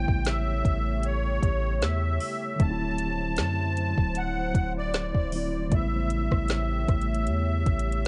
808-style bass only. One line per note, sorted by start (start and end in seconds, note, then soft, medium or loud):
0.08 0.63 A1 loud
0.65 1.40 A1 loud
1.43 1.83 A1 loud
1.82 2.19 E2 loud
2.60 3.39 D1 loud
3.38 3.95 F#2 medium
3.98 4.52 D1 loud
4.55 5.12 D1 loud
5.15 5.69 D1 loud
5.71 6.29 A1 loud
6.32 6.86 A1 loud
6.88 7.29 A1 loud
7.28 7.64 E2 loud
7.66 8.08 A1 loud